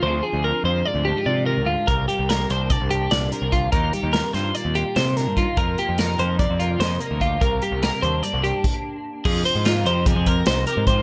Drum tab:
CC |---------|---------|---------|---------|
HH |---------|xxxxxxxxx|xxxxxxxxx|xxxxxxxxx|
SD |---------|--o---o--|--oo--oo-|--o---o--|
BD |---------|o---o---o|o-------o|o---o---o|

CC |------x--|x--------|
HH |xxxxxx---|-xxxxxxxx|
SD |--o------|--o---o--|
BD |o-----o--|o---oo--o|